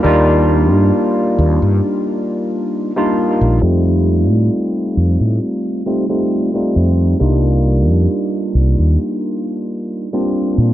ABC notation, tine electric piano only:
X:1
M:4/4
L:1/16
Q:1/4=67
K:Fmix
V:1 name="Tine electric piano"
[G,B,DEF]12- [G,B,DEF] [G,B,DEF]3 | [G,A,CEF]8- [G,A,CEF]2 [G,A,CEF] [G,A,CEF]2 [G,A,CEF]3 | [G,B,DEF]12- [G,B,DEF] [G,B,CDF]3 |]